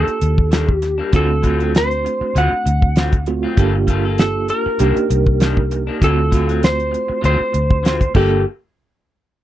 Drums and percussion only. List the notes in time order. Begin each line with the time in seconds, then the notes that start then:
0.08 closed hi-hat
0.21 closed hi-hat
0.38 kick
0.52 snare, closed hi-hat
0.69 kick
0.82 snare, closed hi-hat
1.13 kick, closed hi-hat
1.43 kick, closed hi-hat
1.60 closed hi-hat
1.75 snare, closed hi-hat
1.91 closed hi-hat
2.06 closed hi-hat
2.36 closed hi-hat
2.66 closed hi-hat
2.82 kick
2.96 snare, closed hi-hat
3.12 kick, closed hi-hat
3.26 closed hi-hat
3.57 kick, closed hi-hat
3.88 kick, closed hi-hat
4.18 snare, closed hi-hat
4.48 closed hi-hat
4.79 closed hi-hat
4.97 closed hi-hat
5.10 closed hi-hat
5.26 kick
5.40 snare, closed hi-hat
5.57 kick
5.71 closed hi-hat
6.02 kick, closed hi-hat
6.32 kick, closed hi-hat
6.49 closed hi-hat
6.63 snare, closed hi-hat
6.80 closed hi-hat
6.94 closed hi-hat
7.24 closed hi-hat
7.54 closed hi-hat
7.70 kick
7.85 snare, closed hi-hat
8.01 kick, closed hi-hat
8.15 kick, crash